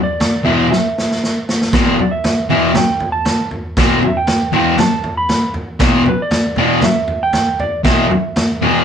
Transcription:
0.03 0.45 D5 loud
0.20 snare loud
0.20 floor tom loud
0.44 0.65 E2 medium
0.44 0.66 B2 loud
0.44 0.66 E3 loud
0.44 0.52 E5 medium
0.44 floor tom medium
0.70 1.44 E5 medium
0.70 snare medium
0.98 snare medium
1.11 snare medium
1.24 snare medium
1.49 snare medium
1.62 snare medium
1.73 1.94 E2 medium
1.73 1.95 B2 medium
1.73 1.95 E3 medium
1.73 kick loud
1.73 snare loud
1.73 floor tom medium
1.99 2.13 D5 medium
1.99 floor tom medium
2.11 2.49 E5 medium
2.24 snare loud
2.24 floor tom medium
2.50 2.70 E2 medium
2.50 2.71 B2 medium
2.50 2.71 E3 medium
2.50 2.77 E5 medium
2.50 floor tom medium
2.75 3.12 G5 loud
2.75 snare loud
2.75 floor tom medium
3.00 floor tom medium
3.12 3.49 A5 loud
3.25 snare loud
3.25 floor tom medium
3.51 floor tom medium
3.77 3.98 E2 medium
3.77 3.98 B2 loud
3.77 3.99 E3 loud
3.77 kick loud
3.77 snare loud
3.77 floor tom loud
4.02 floor tom medium
4.07 4.18 E5 medium
4.17 4.54 G5 medium
4.27 snare loud
4.27 floor tom medium
4.52 4.73 E2 loud
4.52 4.74 B2 medium
4.52 4.74 E3 loud
4.52 4.79 G5 medium
4.52 floor tom medium
4.78 5.17 A5 medium
4.78 snare loud
4.78 floor tom medium
5.04 floor tom medium
5.17 5.53 B5 loud
5.29 snare loud
5.29 floor tom medium
5.54 floor tom medium
5.79 6.01 E2 medium
5.79 6.01 B2 loud
5.79 6.01 E3 loud
5.79 kick loud
5.79 snare loud
5.79 floor tom medium
6.06 6.21 B4 medium
6.06 floor tom medium
6.22 6.59 D5 loud
6.31 snare loud
6.31 floor tom medium
6.56 6.78 E2 medium
6.56 6.79 B2 loud
6.56 6.79 E3 medium
6.56 6.85 D5 medium
6.56 floor tom medium
6.81 7.23 E5 loud
6.81 snare loud
6.81 floor tom medium
7.08 floor tom medium
7.23 7.62 G5 loud
7.33 snare medium
7.33 floor tom medium
7.59 7.84 D5 loud
7.59 floor tom medium
7.84 8.05 E2 medium
7.84 8.06 B2 loud
7.84 8.06 E3 medium
7.84 8.84 E5 medium
7.84 kick loud
7.84 snare loud
7.84 floor tom medium
8.11 floor tom medium
8.36 snare loud
8.36 floor tom medium
8.62 8.83 E2 medium
8.62 8.83 B2 loud
8.62 8.83 E3 medium
8.62 floor tom medium

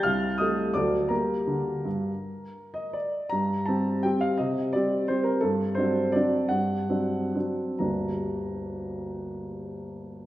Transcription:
0.03 0.38 C2 soft
0.03 0.36 F5 medium
0.03 0.38 F6 medium
0.38 0.72 G3 soft
0.38 0.72 A3 soft
0.38 0.72 A4 soft
0.38 0.72 D#5 soft
0.38 0.74 D#6 medium
0.74 1.10 D2 soft
0.74 1.07 F#3 soft
0.74 1.07 A3 soft
0.74 1.08 A4 soft
0.74 1.08 D5 soft
0.74 1.10 D6 medium
1.09 1.36 G3 soft
1.09 1.40 A#3 soft
1.09 1.40 G4 soft
1.09 3.09 A#4 soft
1.09 3.12 A#5 medium
1.47 1.74 D3 soft
1.85 2.11 G2 soft
2.74 2.93 D#5 medium
2.93 3.30 D5 soft
3.29 3.66 G2 soft
3.29 3.66 A#5 medium
3.66 4.00 G3 soft
3.66 4.00 C4 soft
3.66 4.00 G4 soft
3.66 4.02 A5 medium
4.03 4.35 G3 soft
4.03 4.36 C4 soft
4.03 4.36 G4 soft
4.03 4.21 G5 medium
4.21 4.38 F5 medium
4.38 4.72 C3 soft
4.38 4.72 D#5 medium
4.73 5.05 G3 soft
4.73 5.06 C4 soft
4.73 5.06 G4 soft
4.73 5.08 D5 medium
5.08 5.39 G3 soft
5.08 5.40 C4 soft
5.08 5.40 G4 soft
5.08 5.25 C5 medium
5.24 5.41 A#4 medium
5.41 5.76 G2 soft
5.41 5.76 A4 medium
5.75 6.10 F#3 soft
5.75 6.10 C4 soft
5.75 6.10 D4 soft
5.75 6.12 C5 medium
6.12 6.47 F#3 soft
6.12 6.47 C4 soft
6.12 6.48 D4 soft
6.12 6.49 D5 medium
6.48 6.88 G2 soft
6.48 7.11 F#5 medium
6.89 7.30 F#3 soft
6.89 7.30 C4 soft
6.89 7.31 D4 soft
7.35 7.77 F#3 soft
7.35 7.77 C4 soft
7.35 7.77 D4 soft
7.79 10.26 G1 soft
7.79 10.26 D2 soft
7.79 10.26 G3 soft
7.79 10.26 A#3 soft
7.79 10.26 D4 soft
7.79 10.26 G4 soft
7.79 10.26 A#5 soft

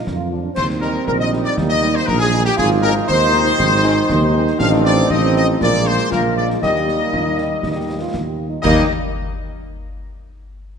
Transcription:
0.00 0.28 F3 medium
0.00 0.28 D4 medium
0.07 0.49 F2 medium
0.07 concert bass drum medium
0.07 snare medium
0.16 0.28 F4 medium
0.32 0.41 F3 medium
0.32 0.41 D4 medium
0.32 0.41 F4 medium
0.43 0.53 D4 medium
0.54 0.99 D#2 medium
0.54 2.54 G3 medium
0.54 1.59 C4 loud
0.54 2.54 D#4 medium
0.54 0.62 C5 loud
0.54 0.68 C5 loud
0.54 concert bass drum medium
0.54 snare medium
0.54 crash medium
0.70 snare medium
0.81 0.91 G3 medium
0.81 0.92 D#4 medium
0.81 1.05 A#4 loud
0.81 0.88 A#4 medium
0.81 snare medium
1.07 1.49 A#1 medium
1.07 1.12 A#4 loud
1.07 1.19 A#4 medium
1.07 concert bass drum medium
1.19 1.25 D#5 loud
1.19 1.31 D#5 loud
1.33 1.42 G3 medium
1.33 1.42 D#4 medium
1.33 snare medium
1.44 1.56 D5 loud
1.44 1.51 D5 loud
1.57 2.00 D#2 loud
1.57 2.56 A#3 medium
1.57 concert bass drum medium
1.57 snare medium
1.69 1.93 D#5 loud
1.69 1.94 D#5 loud
1.69 snare medium
1.82 1.92 G3 medium
1.82 1.92 D#4 medium
1.82 snare medium
1.95 2.08 C5 loud
2.07 2.50 A#1 loud
2.07 2.20 A#4 loud
2.07 2.21 A#4 medium
2.07 concert bass drum medium
2.07 snare medium
2.19 2.44 G#4 loud
2.19 2.27 G#4 loud
2.33 2.42 G3 medium
2.33 2.43 D#4 medium
2.45 2.57 G4 loud
2.45 2.58 G4 loud
2.45 snare medium
2.57 3.01 G#1 loud
2.57 4.61 D#3 loud
2.57 4.57 D#4 loud
2.57 3.10 F4 loud
2.57 2.69 G#4 loud
2.57 2.64 G#4 loud
2.57 concert bass drum medium
2.57 snare medium
2.57 crash soft
2.71 snare medium
2.82 2.93 G#3 loud
2.82 2.93 C4 medium
2.82 2.93 D#4 loud
2.82 2.94 A#4 loud
2.82 2.90 A#4 loud
2.82 snare medium
3.08 3.51 D#2 loud
3.08 4.60 D#4 loud
3.08 4.56 C5 loud
3.08 4.57 C5 loud
3.08 concert bass drum medium
3.34 3.43 G#3 medium
3.34 3.43 C4 loud
3.34 3.43 D#4 medium
3.34 snare medium
3.59 4.01 G#1 loud
3.59 concert bass drum medium
3.59 snare medium
3.72 snare medium
3.84 3.94 G#3 loud
3.84 3.94 C4 loud
3.84 3.93 D#4 loud
3.84 snare medium
4.09 4.52 D#2 loud
4.09 concert bass drum loud
4.09 snare medium
4.34 4.43 G#3 medium
4.34 4.43 C4 medium
4.34 4.43 D#4 medium
4.47 snare medium
4.58 5.05 A1 loud
4.58 5.58 D#3 loud
4.58 5.06 F3 loud
4.58 5.06 C4 loud
4.58 5.62 C4 loud
4.58 5.07 D4 loud
4.58 5.06 D#4 loud
4.58 4.66 F5 loud
4.58 4.71 F5 loud
4.58 concert bass drum loud
4.58 snare medium
4.58 crash soft
4.73 snare medium
4.85 4.91 D5 loud
4.85 5.09 D5 loud
4.85 snare medium
5.10 5.55 A1 loud
5.10 5.58 F3 loud
5.10 5.57 C4 medium
5.10 5.58 C4 loud
5.10 5.58 D#4 loud
5.10 5.16 D#5 medium
5.10 5.36 D#5 loud
5.10 concert bass drum medium
5.36 5.43 D#5 loud
5.36 5.48 D#5 loud
5.36 snare medium
5.61 5.98 A#1 loud
5.61 6.10 G#3 loud
5.61 6.62 G#3 medium
5.61 6.08 A#3 medium
5.61 6.61 A#3 medium
5.61 6.09 A#3 medium
5.61 6.10 F4 loud
5.61 5.67 D5 loud
5.61 5.86 D5 loud
5.61 concert bass drum medium
5.61 snare medium
5.74 snare medium
5.86 6.12 C5 loud
5.86 5.93 C5 loud
5.86 snare medium
6.11 6.56 A#1 medium
6.11 6.58 G#3 medium
6.11 6.58 A#3 medium
6.11 6.58 F4 medium
6.11 6.59 F4 loud
6.11 6.23 A#4 loud
6.11 6.36 A#4 medium
6.11 concert bass drum medium
6.11 snare medium
6.37 6.43 D5 medium
6.37 6.49 D5 loud
6.50 snare medium
6.62 7.07 D#2 medium
6.62 8.34 G3 medium
6.62 8.35 G3 medium
6.62 8.35 A#3 medium
6.62 8.34 D#4 medium
6.62 7.05 G4 medium
6.62 8.09 D#5 loud
6.62 8.10 D#5 loud
6.62 concert bass drum medium
6.62 snare medium
6.62 crash soft
6.75 snare medium
6.88 snare medium
7.13 7.57 D#2 medium
7.13 7.24 F4 medium
7.13 concert bass drum medium
7.38 7.49 D#4 medium
7.38 snare medium
7.63 8.08 D#2 medium
7.63 7.75 D#4 medium
7.63 concert bass drum medium
7.63 snare medium
7.76 7.99 G4 medium
8.01 8.26 F4 medium
8.14 8.58 D#2 medium
8.14 concert bass drum medium
8.14 snare medium
8.25 8.49 G4 medium
8.49 8.62 D#4 medium
8.62 8.85 D#2 loud
8.62 8.84 G3 loud
8.62 8.85 G3 loud
8.62 8.84 A#3 loud
8.62 8.86 A#3 loud
8.62 8.85 D#4 loud
8.62 8.84 D#5 loud
8.62 8.92 D#5 loud
8.62 concert bass drum loud
8.62 snare loud
8.62 crash medium

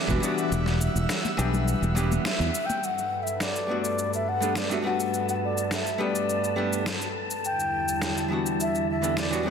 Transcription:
0.00 2.78 G3 medium
0.00 2.78 E5 medium
0.00 2.84 E5 medium
0.00 2.78 F#5 medium
0.00 0.49 D6 medium
0.07 0.17 E1 medium
0.07 0.19 E3 loud
0.07 0.19 G3 medium
0.07 0.19 B3 medium
0.07 0.20 D4 medium
0.07 0.20 F#4 loud
0.07 kick medium
0.07 muted conga soft
0.07 shaker soft
0.20 1.34 E3 medium
0.20 1.34 G3 medium
0.20 1.35 B3 medium
0.20 1.36 D4 medium
0.20 shaker medium
0.25 1.36 F#4 loud
0.38 shaker soft
0.52 0.86 E1 loud
0.52 2.80 E6 medium
0.52 muted conga medium
0.52 shaker soft
0.66 snare soft
0.66 shaker soft
0.81 muted conga soft
0.81 shaker medium
0.95 1.04 E1 loud
0.95 shaker soft
1.09 snare loud
1.09 shaker soft
1.25 muted conga medium
1.25 shaker soft
1.37 1.73 B1 medium
1.37 1.92 E3 loud
1.37 1.92 G3 medium
1.37 1.93 B3 medium
1.37 1.93 D4 loud
1.37 1.93 G4 loud
1.37 shaker medium
1.53 muted conga medium
1.53 high conga medium
1.53 low conga medium
1.53 shaker soft
1.68 shaker soft
1.82 2.16 E1 medium
1.82 shaker soft
1.95 2.22 E3 medium
1.95 2.23 G3 medium
1.95 2.23 B3 medium
1.95 2.23 D4 medium
1.95 2.24 G4 loud
1.95 muted conga medium
1.95 high conga medium
1.95 shaker medium
2.11 high conga medium
2.11 low conga medium
2.11 shaker soft
2.25 2.67 E5 loud
2.25 snare loud
2.25 muted conga medium
2.25 shaker soft
2.39 2.48 E2 loud
2.39 shaker soft
2.55 shaker medium
2.66 2.86 G5 loud
2.66 muted conga medium
2.70 shaker soft
2.83 7.40 G2 medium
2.83 7.40 A4 medium
2.83 7.40 B4 medium
2.83 3.24 F#5 medium
2.83 9.50 A5 medium
2.83 shaker soft
2.98 shaker soft
3.23 3.44 E5 medium
3.27 shaker medium
3.40 3.80 D5 medium
3.40 snare medium
3.40 shaker soft
3.56 shaker soft
3.67 4.37 G3 medium
3.67 4.37 A3 medium
3.67 4.38 B3 medium
3.67 4.39 D4 medium
3.71 4.39 F#4 medium
3.81 4.11 D5 medium
3.81 shaker soft
3.99 shaker soft
4.14 4.30 E5 medium
4.14 shaker soft
4.29 4.59 F#5 medium
4.40 4.66 G3 medium
4.40 4.67 A3 medium
4.40 4.67 B3 medium
4.40 4.67 D4 medium
4.40 4.68 A4 medium
4.40 shaker medium
4.55 4.71 D5 medium
4.55 snare medium
4.55 shaker soft
4.69 4.81 G3 medium
4.69 4.81 A3 medium
4.69 4.81 B3 medium
4.69 4.82 D4 medium
4.69 4.82 F#4 medium
4.69 4.78 E5 medium
4.69 shaker soft
4.82 5.95 G3 medium
4.82 5.96 A3 medium
4.82 5.97 B3 medium
4.82 5.97 D4 medium
4.86 5.98 F#4 medium
4.86 5.26 F#5 medium
5.00 shaker medium
5.14 shaker soft
5.29 5.36 F#5 medium
5.29 shaker soft
5.45 5.70 D5 medium
5.58 shaker medium
5.71 5.99 E5 medium
5.71 snare medium
5.71 shaker soft
5.87 shaker soft
5.98 6.53 G3 medium
5.98 6.54 A3 medium
5.98 6.54 B3 medium
5.98 6.54 D4 medium
5.98 6.55 G4 medium
5.98 6.83 D5 medium
6.15 shaker medium
6.30 shaker soft
6.44 shaker soft
6.56 6.84 G3 medium
6.56 6.84 A3 medium
6.56 6.84 B3 medium
6.56 6.84 D4 medium
6.56 6.85 G4 medium
6.73 shaker medium
6.86 snare medium
6.86 shaker soft
7.02 shaker soft
7.31 shaker medium
7.44 9.50 E2 medium
7.44 9.50 D3 medium
7.44 9.50 G3 medium
7.44 9.50 E4 medium
7.44 8.27 G5 loud
7.44 shaker soft
7.60 shaker soft
7.88 shaker medium
8.02 snare medium
8.02 shaker medium
8.17 shaker soft
8.28 8.98 E3 medium
8.28 8.99 G3 medium
8.28 9.00 B3 medium
8.28 9.00 D4 medium
8.33 9.01 F#4 medium
8.46 shaker medium
8.60 8.87 E5 medium
8.60 shaker medium
8.75 shaker soft
8.91 9.16 E5 medium
9.02 9.28 E3 medium
9.02 9.28 G3 medium
9.02 9.28 B3 medium
9.02 9.29 D4 medium
9.02 9.29 A4 medium
9.02 shaker medium
9.17 9.49 D5 medium
9.17 snare medium
9.17 shaker medium
9.30 9.42 E3 medium
9.30 9.42 G3 medium
9.30 9.43 B3 medium
9.30 9.43 D4 medium
9.30 9.43 F#4 medium
9.30 shaker soft
9.43 9.50 E3 medium
9.43 9.50 G3 medium
9.43 9.50 B3 medium
9.43 9.50 D4 medium

